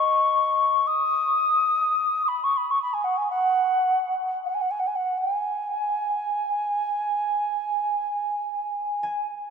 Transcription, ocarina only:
Already playing: C#6
0.87 D#6
2.28 B5
2.43 C#6
2.57 B5
2.70 C#6
2.81 B5
2.93 G#5
3.04 F#5
3.17 G#5
3.30 F#5
4.45 F#5
4.54 G#5
4.61 F#5
4.70 G#5
4.79 F#5
4.86 G#5
4.95 F#5
5.18 G#5

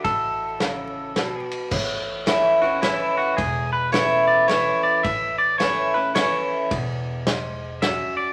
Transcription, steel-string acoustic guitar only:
0.04 A2
0.60 C#3
1.16 B2
1.71 A2
2.26 E3 A3 C#4 E4
2.62 C#4 E4
2.82 E3 A3 C#4 E4
3.38 E2
3.92 E3 A3 C#4 E4
4.48 E3 A3 C#4 E4
5.04 A2
5.59 E3 A3 C#4 E4
5.94 C#4 E4
6.15 E3 A3 C#4 E4
6.71 E2
7.27 G#2
7.82 F#2

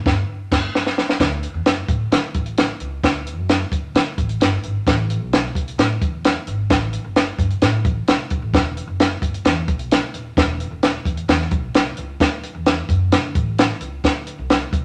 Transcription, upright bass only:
0.06 G1
0.51 G1
1.20 D2
1.54 E2
1.66 F#2
1.88 A2
2.12 D3
2.35 A1
2.80 C#2
3.03 D2
3.38 F#2
3.72 D2
3.95 D3
4.18 A1
4.40 G1
4.64 G#1
4.87 A1
5.20 B1
5.55 C2
5.78 A2
6.02 E2
6.47 G#1
6.70 A1
7.04 G1
7.38 G2
7.62 A2
7.85 A1
8.08 C2
8.31 B1
8.42 A1
8.54 E1
8.88 F#1
9.22 G1
9.45 E2
9.68 B1
10.14 D#1
10.37 E1
10.71 E1
11.05 E2
11.28 E2
11.51 B1
11.75 C2
11.97 C#2
12.20 D2
12.55 E2
12.89 F#2
13.12 D3
13.35 A1
13.81 C#2
14.04 D2
14.39 C2
14.73 C3

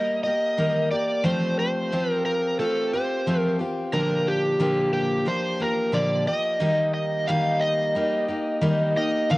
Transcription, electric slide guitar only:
Already playing: D#5
0.23 D#5
0.91 D5
1.25 C5
1.59 C5
2.11 A#4
2.25 A#4
2.59 A4
2.93 C5
3.40 A#4
3.93 A#4
4.28 G4
4.94 G4
5.28 C5
5.62 A#4
5.94 D5
6.28 D#5
6.94 D#5
7.28 F5
7.61 D#5
8.97 D#5
9.31 F5

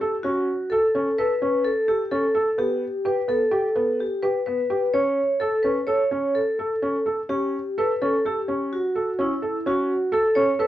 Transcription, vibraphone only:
Already playing: G4
0.23 F#4
0.70 A4
1.19 B4
1.65 A4
1.88 G4
2.11 A4
2.59 G4
3.06 B4
3.29 A4
4.00 G4
4.22 B4
4.46 B4
4.93 C#5
5.40 A4
5.63 B4
5.86 C#5
6.35 A4
7.29 G4
7.78 B4
8.02 A4
8.26 G4
8.73 F#4
9.21 E4
9.67 F#4
10.14 A4
10.35 C#5
10.60 B4

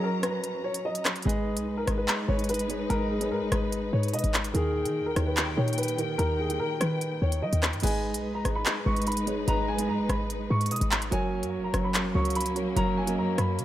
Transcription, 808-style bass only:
1.26 G#1
1.57 B1
1.88 G#1
2.29 G#1
2.90 G#1
3.31 G#2
3.42 G#1
3.52 G#1
3.93 G#2
4.14 B2
4.24 G#1
4.55 D#2
4.86 D#3
5.01 D#2
5.16 D#2
5.57 A#2
6.19 D#2
6.60 D#3
6.81 D#3
7.22 D#2
7.42 G3
7.53 D#2
7.73 G2
7.83 G#1
8.14 B1
8.45 G#1
8.86 G#1
9.48 G#1
9.89 G#2
9.99 G#1
10.09 G#1
10.50 G#2
10.71 B2
10.81 G#1
11.12 F#1
11.43 F#2
11.58 F#1
11.74 F#1
12.15 C#2
12.77 F#1
13.18 F#2
13.38 F#2
13.59 C#3

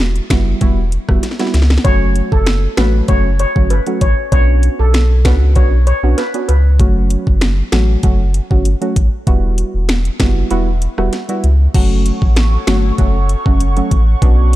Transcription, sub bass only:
Already playing: E1
0.30 F#1
0.61 E1
1.09 E1
1.54 C#2
1.85 F#1
2.32 F#1
2.78 A1
3.08 F#1
3.56 G1
4.01 A1
4.32 B1
4.79 B1
5.25 C#2
5.56 B1
6.03 B1
6.49 C#2
6.80 F#1
7.27 F#1
7.72 A1
8.03 F#1
8.51 G1
8.96 A1
9.27 E1
9.74 E1
10.20 F#1
10.51 E1
10.98 E1
11.44 C#2
11.74 F#1
12.22 A1
12.67 G1
12.98 F#1
13.46 F#1
13.91 A1
14.22 B1

